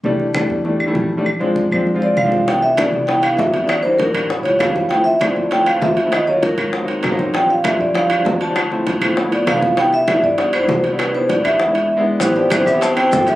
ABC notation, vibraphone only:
X:1
M:4/4
L:1/8
Q:1/4=197
K:C
V:1 name="Vibraphone"
z8 | z4 z d f2 | g e d2 g f e2 | d c _B2 z ^c f2 |
g e d2 g f e2 | _e _d _B2 z4 | g f e d f2 z a- | a3 z2 d f2 |
g e2 d2 c2 z | B c d e4 z | [K:Am] c d c e a g2 e |]